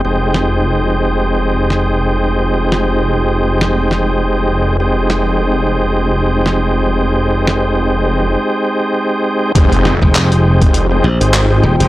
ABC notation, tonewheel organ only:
X:1
M:4/4
L:1/16
Q:"Swing 16ths" 1/4=101
K:Fm
V:1 name="Tonewheel organ"
[A,CEG]16- | [A,CEG]16 | [A,CEG]16- | [A,CEG]16 |
[A,CEG]3 [A,CEG]6 [A,CEG] z [A,CEG]2 [A,CEG]2 [A,CEG] |]